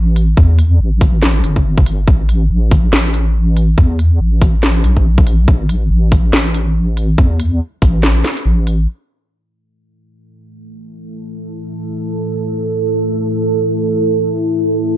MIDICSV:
0, 0, Header, 1, 4, 480
1, 0, Start_track
1, 0, Tempo, 425532
1, 421, Time_signature, 4, 2, 24, 8
1, 16888, End_track
2, 0, Start_track
2, 0, Title_t, "Ambient pad"
2, 0, Program_c, 0, 92
2, 10017, Note_on_c, 0, 57, 78
2, 10018, Note_on_c, 0, 64, 69
2, 10019, Note_on_c, 0, 69, 85
2, 16888, Note_off_c, 0, 57, 0
2, 16888, Note_off_c, 0, 64, 0
2, 16888, Note_off_c, 0, 69, 0
2, 16888, End_track
3, 0, Start_track
3, 0, Title_t, "Wobble bass"
3, 0, Program_c, 1, 39
3, 0, Note_on_c, 1, 33, 99
3, 404, Note_off_c, 1, 33, 0
3, 420, Note_on_c, 1, 40, 104
3, 885, Note_off_c, 1, 40, 0
3, 900, Note_on_c, 1, 33, 101
3, 1605, Note_off_c, 1, 33, 0
3, 1620, Note_on_c, 1, 31, 99
3, 2325, Note_off_c, 1, 31, 0
3, 2341, Note_on_c, 1, 33, 104
3, 2805, Note_off_c, 1, 33, 0
3, 2822, Note_on_c, 1, 33, 99
3, 3286, Note_off_c, 1, 33, 0
3, 3301, Note_on_c, 1, 33, 99
3, 4245, Note_off_c, 1, 33, 0
3, 4261, Note_on_c, 1, 40, 103
3, 4725, Note_off_c, 1, 40, 0
3, 4739, Note_on_c, 1, 33, 100
3, 5444, Note_off_c, 1, 33, 0
3, 5458, Note_on_c, 1, 34, 99
3, 6164, Note_off_c, 1, 34, 0
3, 6180, Note_on_c, 1, 33, 104
3, 6645, Note_off_c, 1, 33, 0
3, 6659, Note_on_c, 1, 33, 99
3, 7124, Note_off_c, 1, 33, 0
3, 7139, Note_on_c, 1, 33, 99
3, 8084, Note_off_c, 1, 33, 0
3, 8101, Note_on_c, 1, 40, 104
3, 8565, Note_off_c, 1, 40, 0
3, 8821, Note_on_c, 1, 33, 97
3, 9285, Note_off_c, 1, 33, 0
3, 9538, Note_on_c, 1, 33, 97
3, 10004, Note_off_c, 1, 33, 0
3, 16888, End_track
4, 0, Start_track
4, 0, Title_t, "Drums"
4, 183, Note_on_c, 9, 42, 78
4, 295, Note_off_c, 9, 42, 0
4, 421, Note_on_c, 9, 36, 119
4, 534, Note_off_c, 9, 36, 0
4, 661, Note_on_c, 9, 42, 81
4, 774, Note_off_c, 9, 42, 0
4, 1141, Note_on_c, 9, 36, 107
4, 1142, Note_on_c, 9, 46, 91
4, 1254, Note_off_c, 9, 36, 0
4, 1255, Note_off_c, 9, 46, 0
4, 1382, Note_on_c, 9, 38, 127
4, 1495, Note_off_c, 9, 38, 0
4, 1624, Note_on_c, 9, 42, 83
4, 1736, Note_off_c, 9, 42, 0
4, 1763, Note_on_c, 9, 36, 67
4, 1876, Note_off_c, 9, 36, 0
4, 2003, Note_on_c, 9, 36, 111
4, 2102, Note_on_c, 9, 42, 75
4, 2116, Note_off_c, 9, 36, 0
4, 2215, Note_off_c, 9, 42, 0
4, 2341, Note_on_c, 9, 36, 121
4, 2454, Note_off_c, 9, 36, 0
4, 2583, Note_on_c, 9, 42, 76
4, 2696, Note_off_c, 9, 42, 0
4, 3062, Note_on_c, 9, 36, 107
4, 3063, Note_on_c, 9, 46, 86
4, 3174, Note_off_c, 9, 36, 0
4, 3176, Note_off_c, 9, 46, 0
4, 3303, Note_on_c, 9, 38, 127
4, 3416, Note_off_c, 9, 38, 0
4, 3543, Note_on_c, 9, 42, 75
4, 3656, Note_off_c, 9, 42, 0
4, 4023, Note_on_c, 9, 42, 74
4, 4136, Note_off_c, 9, 42, 0
4, 4261, Note_on_c, 9, 36, 111
4, 4374, Note_off_c, 9, 36, 0
4, 4502, Note_on_c, 9, 42, 78
4, 4615, Note_off_c, 9, 42, 0
4, 4980, Note_on_c, 9, 36, 107
4, 4982, Note_on_c, 9, 46, 96
4, 5093, Note_off_c, 9, 36, 0
4, 5095, Note_off_c, 9, 46, 0
4, 5222, Note_on_c, 9, 38, 118
4, 5335, Note_off_c, 9, 38, 0
4, 5461, Note_on_c, 9, 42, 78
4, 5573, Note_off_c, 9, 42, 0
4, 5602, Note_on_c, 9, 36, 59
4, 5715, Note_off_c, 9, 36, 0
4, 5842, Note_on_c, 9, 36, 104
4, 5941, Note_on_c, 9, 42, 72
4, 5955, Note_off_c, 9, 36, 0
4, 6054, Note_off_c, 9, 42, 0
4, 6181, Note_on_c, 9, 36, 119
4, 6293, Note_off_c, 9, 36, 0
4, 6422, Note_on_c, 9, 42, 82
4, 6535, Note_off_c, 9, 42, 0
4, 6901, Note_on_c, 9, 36, 101
4, 6902, Note_on_c, 9, 46, 96
4, 7014, Note_off_c, 9, 36, 0
4, 7014, Note_off_c, 9, 46, 0
4, 7143, Note_on_c, 9, 38, 115
4, 7255, Note_off_c, 9, 38, 0
4, 7383, Note_on_c, 9, 42, 79
4, 7495, Note_off_c, 9, 42, 0
4, 7863, Note_on_c, 9, 42, 76
4, 7976, Note_off_c, 9, 42, 0
4, 8102, Note_on_c, 9, 36, 118
4, 8214, Note_off_c, 9, 36, 0
4, 8343, Note_on_c, 9, 42, 83
4, 8456, Note_off_c, 9, 42, 0
4, 8821, Note_on_c, 9, 36, 99
4, 8821, Note_on_c, 9, 46, 94
4, 8933, Note_off_c, 9, 46, 0
4, 8934, Note_off_c, 9, 36, 0
4, 9060, Note_on_c, 9, 38, 119
4, 9173, Note_off_c, 9, 38, 0
4, 9301, Note_on_c, 9, 38, 61
4, 9301, Note_on_c, 9, 42, 83
4, 9413, Note_off_c, 9, 38, 0
4, 9413, Note_off_c, 9, 42, 0
4, 9442, Note_on_c, 9, 42, 40
4, 9554, Note_off_c, 9, 42, 0
4, 9779, Note_on_c, 9, 42, 78
4, 9892, Note_off_c, 9, 42, 0
4, 16888, End_track
0, 0, End_of_file